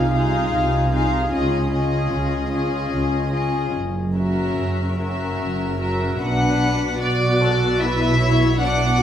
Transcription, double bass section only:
Already playing: C2
0.52 C2
1.32 C#2
2.12 C#2
2.91 C#2
3.74 F#1
4.57 F#1
5.39 F#1
6.21 B1

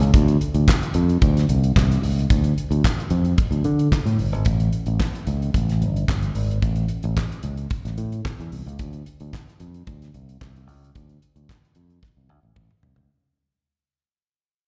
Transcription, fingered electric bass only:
0.00 C#2
0.14 D2
0.54 D2
0.95 F2
1.22 D2
1.49 C2
1.76 C2
2.02 C#2
2.30 D2
2.71 D2
3.11 F2
3.51 D2
3.65 D3
4.06 A2
4.18 G1
4.32 G#1
4.46 A1
4.87 A1
5.27 C#2
5.55 A1
5.82 G1
6.08 G1
6.35 G#1
6.62 A1
7.04 A1
7.43 C#2
7.85 A1
7.98 A2
8.40 E2
8.52 C2
8.66 C#2
8.80 D2
9.21 D2
9.60 F2
9.88 D2
10.14 C2
10.41 C2
10.67 C#2
10.95 D2
11.36 D2
11.76 F2
12.17 C2
12.30 D2
12.43 A1
12.56 A1
12.83 C2
12.98 C#2

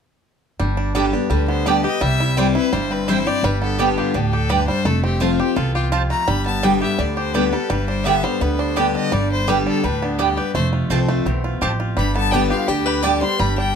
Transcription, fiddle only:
1.31 B4
1.48 C5
1.66 D5
1.85 D#5
2.02 E5
2.38 D5
2.56 B4
2.73 C5
2.92 B4
3.08 C5
3.27 D5
3.45 B4
3.63 A4
3.81 G4
3.99 F4
4.15 G4
4.33 A4
4.50 B4
4.68 C5
4.86 A4
5.04 G4
5.22 F4
5.40 G4
5.56 A4
5.75 F4
6.11 A#5
6.27 B5
6.46 A5
6.64 G5
6.83 E5
7.00 D5
7.18 C5
7.35 B4
7.53 A4
7.70 B4
7.89 C5
8.04 E5
8.23 C5
8.41 B4
8.59 C5
8.77 D5
8.96 D#5
9.13 D5
9.32 C5
9.48 B4
9.67 A4
9.84 B4
10.03 D4
10.19 G4
10.37 B4
10.54 C5
11.97 B5
12.16 A5
12.31 G5
12.50 F5
12.68 G5
12.87 B5
13.04 D6
13.22 C6
13.40 B5
13.58 G5

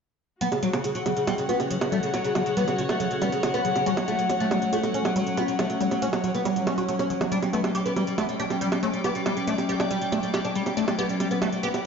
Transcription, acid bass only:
0.41 F#3
0.63 G3
0.84 F#4
1.06 F#3
1.27 G3
1.49 F#4
1.71 F#3
1.92 G3
2.14 F#4
2.35 F#3
2.57 G3
2.78 F#4
3.00 F#3
3.22 G3
3.43 F#4
3.65 F#3
3.86 G3
4.08 F#4
4.30 F#3
4.51 G3
4.73 F#4
4.94 F#3
5.16 G3
5.37 F#4
5.59 F#3
5.81 G3
6.02 F#4
6.24 F#3
6.45 G3
6.67 F#3
6.78 F#4
6.89 A3
7.10 F#3
7.21 F#3
7.32 G3
7.53 A3
7.75 G4
7.96 G3
8.18 A3
8.40 G4
8.61 G3
8.83 A3
9.04 G4
9.26 G3
9.48 A3
9.69 G4
9.91 G3
10.12 A3
10.34 G4
10.55 G3
10.77 A3
10.99 G4
11.20 G3
11.42 A3
11.63 G4

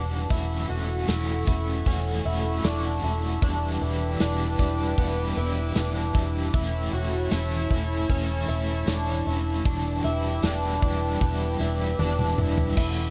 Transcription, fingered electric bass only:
Already playing: E1
0.30 E1
0.70 E1
1.09 E1
1.47 E1
1.86 E1
2.25 E1
2.64 E1
3.03 E1
3.42 E1
3.81 E1
4.21 E1
4.59 E1
4.98 E1
5.37 E1
5.76 E1
6.15 E1
6.54 E1
6.93 E1
7.32 E1
7.71 E1
8.09 E1
8.49 E1
8.88 E1
9.27 E1
9.65 E1
10.05 E1
10.43 E1
10.82 E1
11.21 E1
11.60 E1
11.99 E1
12.38 E1
12.77 E1

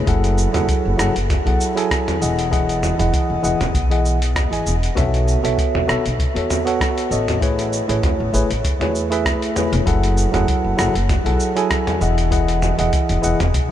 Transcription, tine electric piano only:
0.06 F#3 E4 G#4 A4 F#5
0.53 F#3 E4 G#4 A4 F#5
0.97 F#3 E4 G#4 A4 F#5
1.45 F#3 E4 G#4 A4 F#5
1.75 F#3 E4 G#4 A4 G#5
2.20 E3 E4 G#4 D#5 F#5
2.51 E3 E4 G#4 D#5 F#5
2.98 E3 E4 G#4 D#5 F#5
3.42 E3 E4 G#4 D#5 F#5
3.90 E3 E4 G#4 D#5 F#5
4.51 E3 E4 G#4 D#5 G#5
4.95 B3 F#4 A4 C#5 E5
5.43 B3 F#4 A4 C#5 E5
5.87 B3 F#4 A4 C#5 E5
6.34 B3 F#4 A4 C#5 E5
6.65 B3 F#4 A4 C#5 F#5
7.10 B3 F#4 A4 C#5 D#5
7.40 A3 E4 G#4 B4 C#5
7.88 A3 E4 G#4 B4 C#5
8.33 A3 E4 G#4 B4 C#5
8.80 A3 E4 G#4 B4 C#5
9.10 A3 E4 G#4 B4 E5
9.54 A3 E4 G#4 B4 C#5
9.85 F#3 E4 G#4 A4 F#5
10.32 F#3 E4 G#4 A4 F#5
10.77 F#3 E4 G#4 A4 F#5
11.24 F#3 E4 G#4 A4 F#5
11.55 F#3 E4 G#4 A4 G#5
12.00 E3 E4 G#4 D#5 F#5
12.30 E3 E4 G#4 D#5 F#5
12.77 E3 E4 G#4 D#5 F#5
13.21 E3 E4 G#4 D#5 F#5

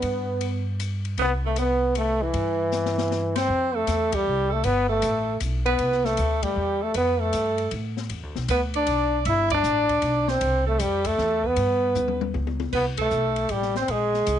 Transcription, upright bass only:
0.03 G2
1.18 C2
2.34 G2
3.48 F2
3.87 E2
4.27 C2
4.64 G1
5.03 A1
5.41 B1
5.79 C2
6.18 D2
6.56 E2
6.95 F2
7.33 G2
7.72 A2
8.10 E2
8.23 D2
8.35 B1
8.48 D2
8.87 B1
9.25 G1
9.63 A1
10.03 B1
10.41 C2
10.80 F2
11.18 E2
11.57 G2
11.95 D#2
12.35 C#2
12.73 C2
13.11 B1
13.50 A1
13.88 A#1
14.27 C2

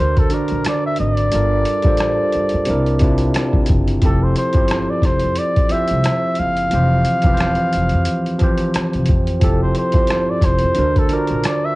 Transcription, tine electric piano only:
Already playing: D3 D4
0.00 F#4 A#4 C5
0.29 D3 D4 F#4 A#4
0.34 D5
1.30 G3 D4 F4 A4
1.35 A#4
1.83 G3 D4 F4 A4
1.88 C5
2.65 C3 C4 D4 E4
2.70 A#4
2.99 C3 C4 D4 E4
3.04 F4
3.11 G4
4.01 F3 C4 E4 G4
4.06 A4
4.53 F3 C4 E4 G4
4.58 C5
5.69 F3 C4 E4 G4
5.74 C5
6.70 E3 F3 C4 G4
6.75 C5
7.23 E3 F3 C4 G4
7.28 B4
7.34 C5
8.39 E3 F3 C4 G4
8.44 C5
9.40 F3 C4 E4 G4
9.45 A4
9.92 F3 C4 E4 G4
9.97 C5
10.75 D3 D4 F#4 A#4
10.80 C5
11.08 D3 D4 F4 A#4
11.13 F#4 D5

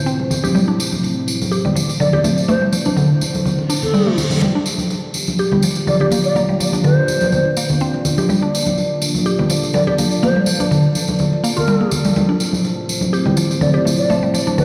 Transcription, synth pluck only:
0.06 C4
0.44 G4
0.55 G3
0.68 D4
1.52 G4
1.65 G3
1.76 F3
2.00 D3
2.13 G4
2.24 A3
2.49 A3
2.62 G3
2.73 F3
2.86 D4
2.97 D3
3.70 D4
3.94 G3
4.07 A3
4.31 D3
4.42 G3
4.55 D4
5.39 G4
5.52 G3
5.63 F3
5.87 D3
6.01 G4
6.12 A#3
6.36 A#3
6.49 G3
6.60 F3
6.73 D4
6.84 D3
7.57 A#3
7.81 C4
8.18 G4
8.29 G3
8.42 D4
9.26 G4
9.39 G3
9.50 F3
9.74 D3
9.87 G4
9.99 A#3
10.23 A#3
10.36 G3
10.47 F3
10.60 D4
10.71 D3
11.44 A#3
11.57 F4
11.68 G3
11.81 A#3
12.05 G3
12.16 G3
12.29 D4
13.13 G4
13.26 G3
13.37 F3
13.61 D3
13.74 G4
13.85 A3
14.10 A3
14.23 G3
14.34 F3
14.47 D4
14.58 D3

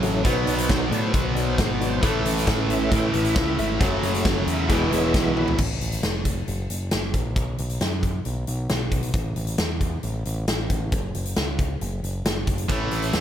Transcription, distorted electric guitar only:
Already playing: F#2 C#3 F#3
0.24 B2 F#3 B3
2.01 A2 E3 A3
3.79 F#2 C#3 F#3
4.68 E2 B2 E3
12.68 A2 E3 A3

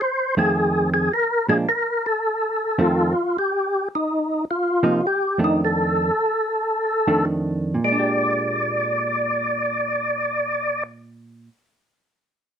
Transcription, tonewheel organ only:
0.01 C5
0.39 G#4
0.94 G#4
1.14 A#4
1.49 G#4
1.69 A#4
2.06 A4
2.81 F4
3.38 G4
3.95 D#4
4.51 F4
5.07 G4
5.44 D#4
5.65 A4
7.84 D5

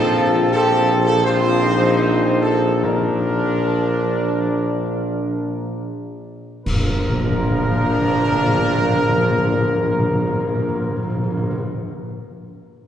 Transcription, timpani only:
Already playing: A#2
2.84 A#2
6.67 A#2
6.74 A#2
6.81 A#2
6.88 A#2
6.95 A#2
7.02 A#2
7.09 A#2
7.16 A#2
7.23 A#2
7.30 A#2
7.37 A#2
7.43 A#2
7.51 A#2
7.57 A#2
7.64 A#2
7.71 A#2
7.77 A#2
7.84 A#2
7.91 A#2
7.98 A#2
8.05 A#2
8.12 A#2
8.19 A#2
8.25 A#2
8.32 A#2
8.39 A#2
8.46 A#2
8.53 A#2
8.60 A#2
8.66 A#2
8.74 A#2
8.81 A#2
8.88 A#2
8.95 A#2
9.02 A#2
9.09 A#2
9.16 A#2
9.23 A#2
9.30 A#2
9.38 A#2
9.45 A#2
9.52 A#2
9.59 A#2
9.65 A#2
9.72 A#2
9.79 A#2
9.86 A#2
9.93 A#2
9.99 A#2
10.06 A#2
10.13 A#2
10.20 A#2
10.27 A#2
10.33 A#2
10.40 A#2
10.47 A#2
10.55 A#2
10.62 A#2
10.69 A#2
10.75 A#2
10.82 A#2
10.89 A#2
10.97 A#2
11.03 A#2
11.10 A#2
11.17 A#2
11.24 A#2
11.30 A#2
11.37 A#2
11.44 A#2
11.51 A#2
11.58 A#2

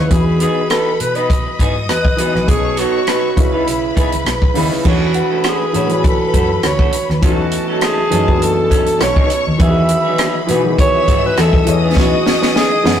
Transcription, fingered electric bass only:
0.11 E2
1.01 B2
1.60 G#2
1.90 E2
2.35 A#1
2.49 B1
3.38 C#2
3.68 B1
3.97 muted fingered electric bass stroke
4.13 C#2
4.27 B1
4.57 D#2
4.86 E2
5.75 A2
6.34 F#2
6.64 D2
7.09 D#2
7.23 E2
8.12 F#2
9.01 B1
9.17 C#2
9.47 D#2
9.60 E2
10.50 B2
11.08 G#2
11.38 E2
11.67 E2
12.86 F#2

